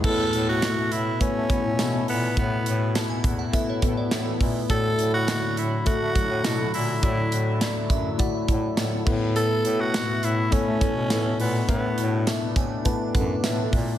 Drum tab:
CC |x-------|--------|--------|-------x|
HH |-xxxxxxo|xxxxxxxo|xxxxxxxo|xxxxxxx-|
TB |--x---x-|--x---x-|--x---x-|--x---x-|
SD |--o---o-|--o---o-|--o---o-|--o---o-|
BD |o---oo--|o--ooo-o|o---oo--|o--ooo-o|

CC |--------|--------|
HH |xxxxxxxo|xxxxxxxo|
TB |--x---x-|--x---x-|
SD |--o---o-|--o---o-|
BD |----oo--|o--ooo-o|